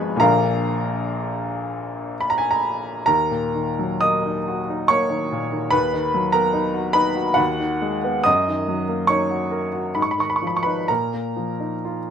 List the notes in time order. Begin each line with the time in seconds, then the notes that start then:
Already playing: G#1 G#2 F3 B3 F4 B4 C#5 G#5 B5 C#6
0.00 G#3
0.16 A#1 A#2 D3 F3 A#3 F5 A#5
0.21 A#4
2.21 B5
2.30 A#5
2.38 G#5
2.51 A#5
3.06 D#2 A#4 A#5
3.31 A#2
3.55 D#3
3.79 F#3
4.01 A#3 D#5 D#6
4.26 D#4
4.48 F#4
4.69 D#4
4.88 A#3 C#5 C#6
5.10 D#3
5.32 A#2
5.52 D#3
5.71 D#2 B4 B5
5.94 D#3
6.14 F#3
6.32 B3 A#4 A#5
6.53 D#4
6.74 F#4
6.93 D#4 B4 B5
7.15 F#4
7.34 D#2 F#4 F#5
7.60 D#3
7.82 G#3
8.04 B3
8.24 F#2 D#5 D#6
8.48 D#3
8.68 F#3
8.88 A#3
9.07 D#4 C#5 C#6
9.30 F#4
9.51 A#4
9.73 F#4
9.95 G#2 B5
10.02 C#6
10.11 B5
10.18 D#3 C#6
10.30 B5
10.36 C#6
10.42 F3
10.47 B5
10.57 C#6
10.63 D#4 B4 B5
10.88 A#2 A#4 A#5
11.13 A#3
11.36 F3
11.60 D#4
11.85 F4